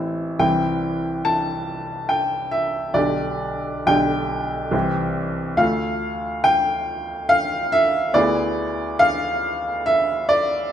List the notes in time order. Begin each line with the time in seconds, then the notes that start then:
Already playing: A1 E3 C4 E4 E5
0.39 C2 E3 C4 E4 G5
1.25 A5
2.09 G5
2.51 E5
2.94 B1 D3 D4 G4 D5
3.86 B1 D3 D4 G4 G5
4.71 C2 E3 C4 G4
5.57 D2 A3 F4 A4 F5
6.44 G5
7.29 F5
7.72 E5
8.14 D2 B3 E4 G#4 D5
8.99 F5
9.86 E5
10.29 D5